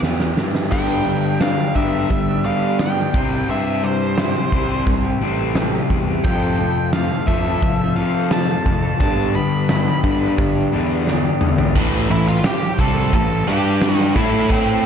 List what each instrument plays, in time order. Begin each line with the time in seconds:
Already playing: clean electric guitar E3 B3 E4
0.02 picked electric bass E2, clean electric guitar G4, snare
0.20 snare
0.37 picked electric bass G2, clean electric guitar E4, snare
0.55 snare
0.71 distorted electric guitar G2 D3 G3, picked electric bass G2, clean electric guitar G3 B3 D4 G4, lead electric guitar G5, kick, crash
1.06 distorted electric guitar G2 D3, clean electric guitar G3 B3 D4 G4
1.40 distorted electric guitar G2 D3, clean electric guitar G3 B3 D4 G4, lead electric guitar F5, snare, open hi-hat
1.58 clean electric guitar B3 D4 G4
1.74 distorted electric guitar G2 D3 G3, picked electric bass G2, clean electric guitar G3 B3 D4 G4, lead electric guitar E5, kick
1.92 clean electric guitar B3 D4 G4
2.10 distorted electric guitar G2 D3, picked electric bass G3, kick, open hi-hat
2.27 clean electric guitar B3 D4 G4
2.44 distorted electric guitar G2 D3 G3, clean electric guitar G3 B3 D4 G4, lead electric guitar F5
2.79 distorted electric guitar G2 D3, clean electric guitar G3 B3 D4 G4, lead electric guitar G5, snare, open hi-hat
2.97 clean electric guitar B3 D4 G4
3.13 picked electric bass C2, distorted electric guitar C3 G3 C4, clean electric guitar C3 G3 C4 E4 G4, kick
3.31 clean electric guitar C4 E4 G4
3.48 picked electric bass G2, clean electric guitar C3 G3 C4 E4 G4, distorted electric guitar C3 G3 C4, lead electric guitar E5, open hi-hat
3.83 distorted electric guitar C3 G3, clean electric guitar G3 C4 E4 G4, lead electric guitar C5
4.17 clean electric guitar C3 G3 C4 E4 G4, distorted electric guitar C3 G3, snare, open hi-hat
4.36 clean electric guitar C4 E4 G4
4.52 picked electric bass C2, distorted electric guitar C3 G3 C4, clean electric guitar G3 C4 E4 G4, kick
4.69 clean electric guitar C4 E4 G4
4.87 picked electric bass C2, distorted electric guitar C3 G3, kick, open hi-hat
5.03 clean electric guitar C4 E4 G4
5.21 picked electric bass A1, distorted electric guitar C3 G3 C4, clean electric guitar G3 C4 E4 G4
5.55 clean electric guitar C3 G3 C4 E4 G4, distorted electric guitar C3 G3, snare, open hi-hat
5.72 clean electric guitar C4 E4 G4
5.90 picked electric bass E2, distorted electric guitar C3 G3, muted clean electric guitar stroke, kick
6.07 clean electric guitar C4 E4 G4
6.24 picked electric bass F2, distorted electric guitar F2 C3 F3, clean electric guitar F3 C4 F4 A4, lead electric guitar G5, kick, open hi-hat
6.58 distorted electric guitar F2 C3, clean electric guitar F3 C4 F4 A4
6.93 distorted electric guitar F2 C3, clean electric guitar F3 C4 F4 A4, lead electric guitar F5, snare, open hi-hat
7.11 clean electric guitar C4 F4 A4
7.27 distorted electric guitar F2 C3 F3, picked electric bass F2, clean electric guitar F3 C4 F4 A4, lead electric guitar E5, kick
7.46 clean electric guitar C4 F4 A4
7.62 distorted electric guitar F2 C3, picked electric bass F3, kick, open hi-hat
7.80 clean electric guitar C4 F4 A4
7.96 distorted electric guitar F2 C3 F3, clean electric guitar F3 C4 F4 A4, lead electric guitar F5
8.31 distorted electric guitar F2 C3, clean electric guitar F3 C4 F4 A4, lead electric guitar A5, snare, open hi-hat
8.48 clean electric guitar C4 F4 A4
8.66 distorted electric guitar F2 C3, picked electric bass F2, muted clean electric guitar stroke, kick
8.82 clean electric guitar C4 F4 A4
9.00 distorted electric guitar G2 D3 G3, picked electric bass G2, clean electric guitar G3 B3 D4 G4, lead electric guitar A5, kick, open hi-hat
9.34 distorted electric guitar G2 D3, clean electric guitar G3 B3 D4 G4, lead electric guitar B5
9.69 distorted electric guitar G2 D3, clean electric guitar G3 B3 D4 G4, snare, open hi-hat
9.86 clean electric guitar B3 D4 G4
10.03 distorted electric guitar G2 D3 G3, picked electric bass G2, clean electric guitar G3 B3 D4 G4, kick
10.20 clean electric guitar B3 D4 G4
10.38 distorted electric guitar G2 D3, picked electric bass G2, kick, open hi-hat
10.54 clean electric guitar B3 D4 G4
10.71 picked electric bass E2, distorted electric guitar G2 D3 G3, clean electric guitar G3 B3 D4 G4
11.06 distorted electric guitar G2 D3, clean electric guitar G3 B3 D4 G4, snare
11.24 clean electric guitar B3 D4 G4
11.41 picked electric bass E2, distorted electric guitar G2 D3, muted clean electric guitar stroke, mid tom
11.58 clean electric guitar B3 D4 G4, floor tom
11.75 picked electric bass A1, distorted electric guitar A2 E3 A3, kick, crash
12.10 picked electric bass A1, distorted electric guitar A2 E3, lead electric guitar E4 E5, crash
12.28 lead electric guitar F4 F5
12.44 lead electric guitar G4 G5, snare, crash
12.61 snare
12.79 picked electric bass C2, distorted electric guitar C3 G3 C4, lead electric guitar A4 A5, kick, crash
13.13 picked electric bass A1, distorted electric guitar A2 E3, lead electric guitar A4 A5, kick, crash
13.47 picked electric bass G2, distorted electric guitar G3 D4 G4, lead electric guitar G4 G5, crash
13.82 snare, crash
13.96 lead electric guitar F5
14.16 picked electric bass A2, distorted electric guitar A3 E4 A4, lead electric guitar E4 E5, kick, crash
14.49 lead electric guitar C4 C5, kick, crash